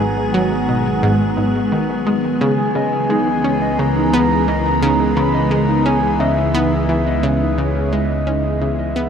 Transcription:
Already playing: synth drone G#1, ambient pad D#3 F#3 G#3 B3 G#4
0.00 synth arpeggio sound G#2, soft synth lead G#5
0.33 synth arpeggio sound F#3, soft synth lead F#5
0.69 synth arpeggio sound B2
1.03 synth arpeggio sound G#2
1.37 synth arpeggio sound G#2
1.72 synth arpeggio sound D#3
2.06 synth arpeggio sound G#3
2.40 synth drone C#2, ambient pad C#3 E3 G#3, synth arpeggio sound C#3, clean electric guitar G#4, soft synth lead G#5
2.58 clean electric guitar G#4
2.75 synth arpeggio sound C#3, clean electric guitar D#5
3.10 synth arpeggio sound G#3, clean electric guitar D#4
3.27 clean electric guitar G#4
3.44 synth arpeggio sound C#4, clean electric guitar G#4
3.62 clean electric guitar D#5
3.79 synth arpeggio sound C#3, soft synth lead A#5
3.96 clean electric guitar D#4
4.13 synth arpeggio sound B3, clean electric guitar G#4
4.31 clean electric guitar G#4
4.48 synth arpeggio sound E3, clean electric guitar D#5
4.82 synth arpeggio sound C#3, clean electric guitar D#4
5.00 clean electric guitar G#4
5.17 synth arpeggio sound C#3, clean electric guitar G#4, soft synth lead B5
5.34 clean electric guitar D#5
5.51 synth arpeggio sound G#3, soft synth lead A#5
5.68 clean electric guitar D#4
5.86 synth arpeggio sound C#4, clean electric guitar G#4, soft synth lead G#5
6.03 clean electric guitar G#4
6.19 synth arpeggio sound C#3, clean electric guitar D#5, soft synth lead E5
6.54 synth arpeggio sound B3, clean electric guitar D#4
6.72 clean electric guitar G#4
6.89 synth arpeggio sound E3, clean electric guitar G#4
7.06 clean electric guitar D#5
7.23 synth arpeggio sound C#3
7.41 clean electric guitar D#4
7.58 synth arpeggio sound C#3, clean electric guitar G#4, soft synth lead C#5
7.75 clean electric guitar G#4
7.92 synth arpeggio sound G#3, clean electric guitar D#5, soft synth lead D#5
8.27 synth arpeggio sound C#4, clean electric guitar D#4
8.44 clean electric guitar G#4
8.61 synth arpeggio sound C#3, clean electric guitar G#4, soft synth lead E5
8.79 clean electric guitar D#5
8.96 synth arpeggio sound B3

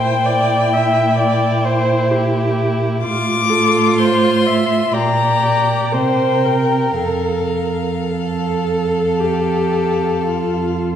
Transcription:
Already playing: cello A#2, violin E4 G5, viola C5
0.25 viola D5
0.73 viola E5
1.18 viola D5
1.64 viola C5
2.10 viola G4
3.02 cello A2, viola F4, violin F4 D6
3.50 viola A4
3.97 viola C5, violin C6
4.46 viola E5
4.93 cello A#2, violin G4 A#5, viola D5
5.92 cello C3, violin A#4 G5, viola C5
6.45 viola A#4
6.99 cello F2, viola A4, violin F5
8.10 viola A4, violin A4
9.20 viola G4
10.28 viola F4

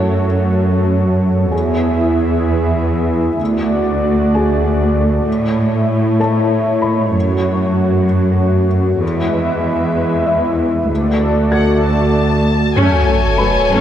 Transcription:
Already playing: cello section F#2, analog synth pad A3 F#4 A4 C#5, felt piano F#5
1.51 cello section E2, analog synth pad B3 E4 G#4 E5, felt piano G#4 G#5
3.39 cello section D2, analog synth pad A3 F#4 D5
4.34 felt piano G#4 G#5
5.27 cello section A2, analog synth pad E4 C#5
6.20 felt piano A4 A5
6.82 felt piano B5
7.14 cello section F#2, analog synth pad F#4
9.01 cello section E2, analog synth pad G#3 E4 B4 E5
10.26 felt piano E5
10.88 cello section D2, analog synth pad A3 F#4 A4 D5
11.52 felt piano A4 G#6, violin section F#5
11.84 violin section A5
12.76 cello section F#2, viola section A3 C#4, analog synth pad A3 F#4 A4 C#5, violin section A4 C#5 G#5, sub drop
13.08 cello section F#2, viola section A3
13.38 cello section F#2, viola section F#3 A3, felt piano B4 B5
13.69 cello section F#2, viola section A3 C#4

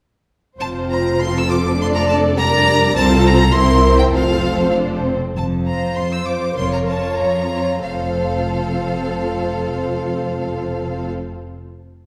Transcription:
0.59 double bass section F1, cello section F2, viola section C4 F4, violin section C5 A5
0.90 violin section A#5
1.19 violin section A4 C6
1.36 violin section E6
1.50 violin section D6
1.79 viola section A3 D4, violin section A4 D5 C6
1.95 violin section A#5
2.08 violin section A5
2.37 viola section G3 D4, violin section A#4 D5 A#5
2.95 double bass section C2, cello section C2, viola section C4 F4, violin section A4 C5 A5
3.25 violin section A#5
3.53 cello section C2, double bass section C2, viola section C4 E4, violin section A#4 C5 C6
3.98 violin section G5
4.13 double bass section F1, cello section F2, viola section C4 F4, violin section A4 C5 F5
4.74 viola section D4
5.06 viola section C4
5.36 double bass section F1, cello section F2, violin section A5
5.65 violin section F4 C5 A#5
5.95 cello section F2, viola section C5, violin section C6
6.11 violin section E6
6.25 violin section F4 C5 D6
6.56 double bass section F1, cello section F2, violin section F4 C#5 C6, viola section A#4
6.73 violin section A#5
6.87 violin section F4 C#5 A5
7.18 cello section F2, viola section C#5, violin section A#5
7.51 violin section F4 C#5
7.82 double bass section F1, cello section F2, viola section C4 F4, violin section A4 C5 F5

